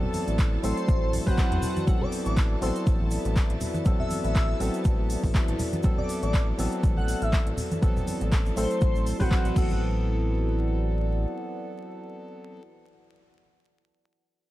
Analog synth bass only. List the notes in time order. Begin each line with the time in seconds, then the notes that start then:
0.28 A1
0.64 A1
0.88 A1
1.27 A1
1.52 E2
1.88 A1
2.26 A1
2.62 A1
2.87 A1
3.25 A1
3.50 A1
3.86 A1
4.24 A1
4.60 A1
4.85 A1
5.24 A1
5.48 A1
5.84 A1
6.23 A1
6.59 A1
6.83 A1
7.22 A1
7.47 A1
7.83 A1
8.21 A1
8.57 A1
8.82 A1
9.20 A1
9.45 A1
9.56 A1